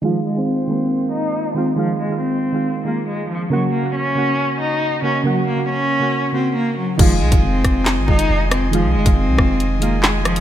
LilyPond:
<<
  \new Staff \with { instrumentName = "Pipe organ" } { \time 4/4 \key f \phrygian \tempo 4 = 138 r1 | r1 | r1 | r1 |
<f' ees'' aes''>1~ | <f' ees'' aes''>1 | }
  \new Staff \with { instrumentName = "Cello" } { \time 4/4 \key f \phrygian f8 aes8 c'4. ees'4 c'8 | f8 aes8 c'4. bes8 aes8 f8 | ges8 bes8 des'4. ees'4 des'8 | ges8 bes8 des'4. c'8 bes8 ges8 |
f8 aes8 c'4. ees'4 c'8 | f8 aes8 c'4. bes8 aes8 f8 | }
  \new Staff \with { instrumentName = "Synth keys" } { \clef bass \time 4/4 \key f \phrygian <ees aes f'>8 r16 <ees aes c'>8 r16 <ees aes bes>4. r8 <ees aes f'>16 r16 | <ees aes f'>8 r16 <ees aes f'>8. r16 <ees aes f'>8 r16 <ees aes f'>4 r8 | <des bes ges'>8 r16 <des bes ges'>8 r16 <des bes ges'>4. r8 <des bes ges'>16 r16 | <des bes ges'>8 r16 <des bes ges'>8. r16 <des bes ges'>8 r16 <des bes ges'>4 r8 |
<ees aes f'>8 r16 <ees aes f'>4~ <ees aes f'>16 r8 <ees aes f'>4 r8 | <ees aes f'>8 r16 <ees aes f'>8 r16 <ees aes f'>8. r16 <ees aes f'>4 r8 | }
  \new Staff \with { instrumentName = "808-style bass" } { \clef bass \time 4/4 \key f \phrygian r1 | r1 | r1 | r1 |
f,,8 c,16 f,,16 f,,8 f,,8. aes,,16 f,,8 f,,4~ | f,,16 c,16 f,,16 f,,8 c,16 f,,2~ f,,8 | }
  \new DrumStaff \with { instrumentName = "Drums" } \drummode { \time 4/4 r4 r4 r4 r4 | r4 r4 r4 r4 | r4 r4 r4 r4 | r4 r4 r4 r4 |
<cymc hh bd>8. <hh bd>16 r8 <hh bd ss>8 <hc hh sn>8 bd16 hh16 r8 <hh ss>8 | hh8. <hh bd>16 r8 <bd ss>8 hh8 hh8 <hc sn>8 <hh ss>16 hh16 | }
>>